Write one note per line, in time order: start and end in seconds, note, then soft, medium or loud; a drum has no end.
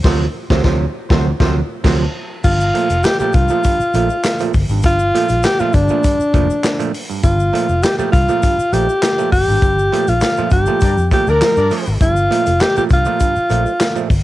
0.03 0.25 D2 loud
0.03 0.26 C3 loud
0.03 0.26 F3 loud
0.03 0.26 F#3 loud
0.03 0.20 C4 medium
0.03 0.20 F#4 loud
0.03 0.20 A4 loud
0.03 0.20 C5 loud
0.03 kick loud
0.03 snare loud
0.03 crash medium
0.50 0.62 D2 loud
0.50 0.63 C3 loud
0.50 0.63 F3 loud
0.50 0.63 F#3 loud
0.50 0.59 C4 loud
0.50 0.59 F#4 medium
0.50 0.59 A4 loud
0.50 0.59 C5 loud
0.50 kick loud
0.50 snare loud
0.63 0.85 D2 loud
0.63 0.86 C3 loud
0.63 0.86 F3 medium
0.63 0.86 F#3 loud
0.63 0.80 C4 medium
0.63 0.79 F#4 medium
0.63 0.79 A4 loud
0.63 0.80 C5 medium
0.63 kick loud
0.63 snare loud
1.09 1.31 D2 loud
1.09 1.31 C3 loud
1.09 1.31 F3 loud
1.09 1.31 F#3 loud
1.09 1.25 C4 medium
1.09 1.25 F#4 loud
1.09 1.25 A4 loud
1.09 1.25 C5 loud
1.09 kick loud
1.09 snare loud
1.40 1.60 D2 loud
1.40 1.61 C3 medium
1.40 1.61 F3 loud
1.40 1.61 F#3 loud
1.40 1.55 C4 medium
1.40 1.55 F#4 loud
1.40 1.55 A4 loud
1.40 1.55 C5 loud
1.40 kick loud
1.40 snare loud
1.84 2.05 D2 loud
1.84 2.05 C3 loud
1.84 2.05 F3 loud
1.84 2.05 F#3 loud
1.84 2.00 C4 loud
1.84 2.00 F#4 loud
1.84 2.00 A4 loud
1.84 2.00 C5 loud
1.84 kick loud
1.84 snare loud
1.84 crash medium
2.44 2.71 G1 loud
2.44 2.59 G2 medium
2.44 3.05 F4 loud
2.44 kick loud
2.44 crash loud
2.44 shaker medium
2.60 shaker medium
2.74 2.89 A#2 medium
2.74 2.89 F3 medium
2.74 2.89 A3 medium
2.74 closed hi-hat medium
2.90 3.03 F1 medium
2.90 2.96 F3 soft
2.90 2.96 A3 soft
2.90 closed hi-hat soft
2.90 shaker medium
3.03 3.19 G4 loud
3.03 snare loud
3.03 clap medium
3.03 closed hi-hat medium
3.03 shaker medium
3.19 3.33 A#2 medium
3.19 3.33 F3 medium
3.19 3.34 A3 medium
3.19 3.35 G4 medium
3.19 muted fingered electric bass stroke soft
3.19 shaker medium
3.33 3.48 C2 loud
3.33 3.49 G2 medium
3.33 4.54 F4 loud
3.33 kick loud
3.33 closed hi-hat medium
3.33 shaker medium
3.48 3.63 A#2 medium
3.48 3.63 F3 medium
3.48 3.63 A3 medium
3.48 shaker medium
3.64 3.79 G2 medium
3.64 kick medium
3.64 closed hi-hat medium
3.64 shaker medium
3.80 muted fingered electric bass stroke medium
3.80 shaker medium
3.94 4.08 A#1 medium
3.94 4.09 A#2 medium
3.94 4.09 F3 medium
3.94 4.09 A3 medium
3.94 closed hi-hat medium
3.94 shaker soft
4.10 4.16 F3 soft
4.10 4.16 A3 soft
4.10 shaker medium
4.24 snare loud
4.24 clap loud
4.24 closed hi-hat loud
4.24 shaker medium
4.39 4.53 A#2 medium
4.39 4.53 F3 medium
4.39 4.53 A3 medium
4.39 closed hi-hat soft
4.39 shaker medium
4.53 4.68 G1 medium
4.53 kick medium
4.53 open hi-hat medium
4.53 shaker medium
4.69 4.84 G#1 loud
4.69 4.83 G2 medium
4.69 shaker medium
4.82 5.10 G1 loud
4.82 4.99 G2 medium
4.82 5.46 F4 loud
4.82 kick loud
4.82 closed hi-hat medium
4.82 shaker medium
4.99 shaker medium
5.15 5.28 A#2 loud
5.15 5.28 F3 medium
5.15 5.29 A3 loud
5.15 closed hi-hat medium
5.29 5.42 A#1 medium
5.29 5.36 F3 soft
5.29 5.36 A3 medium
5.29 closed hi-hat soft
5.29 shaker medium
5.43 5.61 G4 loud
5.43 snare loud
5.43 clap medium
5.43 closed hi-hat loud
5.43 shaker medium
5.59 5.73 A#2 medium
5.59 5.73 F3 medium
5.59 5.73 A3 medium
5.59 5.76 F4 medium
5.59 muted fingered electric bass stroke soft
5.59 shaker medium
5.73 5.88 G1 loud
5.73 5.88 G2 medium
5.73 6.94 D4 medium
5.73 kick loud
5.73 closed hi-hat medium
5.73 shaker medium
5.88 6.02 A#2 medium
5.88 6.02 F3 medium
5.88 6.03 A3 medium
5.88 shaker medium
6.04 6.18 G2 medium
6.04 kick medium
6.04 closed hi-hat loud
6.04 shaker medium
6.20 muted fingered electric bass stroke soft
6.20 shaker medium
6.34 6.48 F1 medium
6.34 6.48 A#2 medium
6.34 6.48 F3 medium
6.34 6.48 A3 medium
6.34 kick medium
6.34 closed hi-hat medium
6.34 shaker medium
6.50 6.56 F3 soft
6.50 6.56 A3 soft
6.50 shaker medium
6.63 snare loud
6.63 clap loud
6.63 closed hi-hat medium
6.63 shaker medium
6.79 6.92 A#2 medium
6.79 6.92 F3 medium
6.79 6.92 A3 medium
6.79 closed hi-hat soft
6.79 shaker medium
6.94 open hi-hat medium
6.94 shaker medium
7.10 7.22 G2 medium
7.10 shaker medium
7.23 7.50 G1 loud
7.23 7.38 G2 medium
7.23 7.84 F4 medium
7.23 kick loud
7.23 closed hi-hat medium
7.23 shaker medium
7.40 shaker medium
7.53 7.67 A#2 medium
7.53 7.67 F3 medium
7.53 7.68 A3 loud
7.53 closed hi-hat medium
7.69 7.81 F1 medium
7.69 shaker medium
7.83 7.97 G4 medium
7.83 snare loud
7.83 clap loud
7.83 closed hi-hat medium
7.83 shaker medium
7.98 8.11 A#2 medium
7.98 8.12 F3 medium
7.98 8.12 A3 loud
7.98 8.11 G4 medium
7.98 muted fingered electric bass stroke soft
7.98 shaker medium
8.12 8.27 C2 loud
8.12 8.27 G2 medium
8.12 8.74 F4 medium
8.12 kick loud
8.12 closed hi-hat medium
8.12 shaker medium
8.29 8.41 A#2 medium
8.29 8.41 F3 medium
8.29 8.42 A3 medium
8.29 shaker medium
8.43 8.57 G2 medium
8.43 kick medium
8.43 closed hi-hat medium
8.43 shaker medium
8.59 muted fingered electric bass stroke soft
8.59 shaker medium
8.73 8.87 A#1 medium
8.73 8.87 A#2 medium
8.73 8.87 F3 medium
8.73 8.87 A3 medium
8.73 9.31 G4 loud
8.73 closed hi-hat medium
8.73 shaker medium
8.89 8.95 F3 soft
8.89 8.95 A3 soft
8.89 shaker medium
9.02 snare loud
9.02 clap loud
9.02 closed hi-hat medium
9.02 shaker medium
9.18 9.31 A#2 medium
9.18 9.31 F3 medium
9.18 9.31 A3 medium
9.18 shaker medium
9.32 9.46 G1 medium
9.32 10.10 G4 loud
9.32 kick medium
9.32 open hi-hat medium
9.32 shaker medium
9.48 9.60 G#1 loud
9.48 9.61 G2 medium
9.48 shaker medium
9.62 9.88 G1 loud
9.62 9.77 G2 medium
9.62 kick loud
9.62 closed hi-hat loud
9.62 shaker medium
9.79 shaker medium
9.92 10.07 A#2 medium
9.92 10.06 F3 medium
9.92 10.07 A3 loud
9.92 closed hi-hat medium
10.08 10.20 A#1 medium
10.08 10.14 F3 soft
10.08 10.14 A3 soft
10.08 10.52 F4 medium
10.08 closed hi-hat soft
10.08 shaker medium
10.21 snare loud
10.21 clap medium
10.21 closed hi-hat medium
10.21 shaker medium
10.37 10.50 A#2 medium
10.37 10.51 F3 medium
10.37 10.51 A3 medium
10.37 muted fingered electric bass stroke soft
10.37 shaker medium
10.50 10.66 G1 medium
10.50 10.66 G2 medium
10.50 11.08 G4 medium
10.50 kick loud
10.50 closed hi-hat medium
10.50 shaker medium
10.66 10.80 A#2 medium
10.66 10.80 F3 medium
10.66 10.80 A3 medium
10.66 shaker medium
10.80 10.96 G2 medium
10.80 10.96 G2 loud
10.80 10.92 D4 medium
10.80 10.92 A#4 medium
10.80 10.92 D5 medium
10.80 kick medium
10.80 closed hi-hat medium
10.80 shaker medium
10.97 11.10 F2 medium
10.97 shaker medium
11.11 11.26 A#2 medium
11.11 11.26 F3 medium
11.11 11.26 A3 medium
11.11 11.31 G4 loud
11.11 kick medium
11.11 closed hi-hat medium
11.11 shaker medium
11.27 11.40 D2 medium
11.27 11.33 F3 soft
11.27 11.33 A3 soft
11.27 11.37 D4 loud
11.27 11.37 A#4 medium
11.27 11.72 A#4 loud
11.27 11.37 D5 loud
11.27 shaker medium
11.41 11.55 F3 medium
11.41 11.56 A3 medium
11.41 snare loud
11.41 clap loud
11.41 closed hi-hat medium
11.41 shaker medium
11.56 11.70 G2 medium
11.56 11.99 D4 loud
11.56 11.99 A#4 loud
11.56 11.99 D5 loud
11.56 shaker medium
11.71 11.85 F3 medium
11.71 11.86 A3 medium
11.71 open hi-hat medium
11.71 shaker soft
11.86 12.00 G#1 medium
11.86 shaker medium
12.00 12.27 G1 loud
12.00 12.15 G2 medium
12.00 12.63 F4 loud
12.00 kick loud
12.00 closed hi-hat medium
12.00 shaker medium
12.16 shaker medium
12.31 12.45 A#2 loud
12.31 12.45 F3 medium
12.31 12.45 A3 loud
12.31 closed hi-hat medium
12.46 12.59 F1 medium
12.46 12.53 F3 soft
12.46 12.52 A3 medium
12.46 closed hi-hat soft
12.46 shaker medium
12.60 12.77 G4 loud
12.60 snare loud
12.60 clap medium
12.60 closed hi-hat medium
12.60 shaker medium
12.76 12.89 A#2 medium
12.76 12.89 F3 medium
12.76 12.89 A3 medium
12.76 12.84 G4 loud
12.76 muted fingered electric bass stroke soft
12.76 shaker medium
12.89 13.05 C2 medium
12.89 13.05 G2 medium
12.89 14.07 F4 loud
12.89 kick loud
12.89 closed hi-hat medium
12.89 shaker medium
13.05 13.19 A#2 medium
13.05 13.19 F3 medium
13.05 13.19 A3 medium
13.05 shaker medium
13.20 13.35 G2 medium
13.20 kick medium
13.20 closed hi-hat medium
13.20 shaker medium
13.36 muted fingered electric bass stroke soft
13.36 shaker medium
13.50 13.64 A#1 medium
13.50 13.64 A#2 medium
13.50 13.64 F3 medium
13.50 13.65 A3 medium
13.50 closed hi-hat medium
13.50 shaker medium
13.66 13.72 F3 soft
13.66 13.72 A3 soft
13.66 shaker medium
13.80 snare loud
13.80 clap loud
13.80 closed hi-hat medium
13.80 shaker medium
13.95 14.08 A#2 medium
13.95 14.08 F3 medium
13.95 14.09 A3 medium
13.95 shaker medium
14.10 14.23 G1 medium
14.10 kick loud
14.10 open hi-hat medium
14.10 shaker soft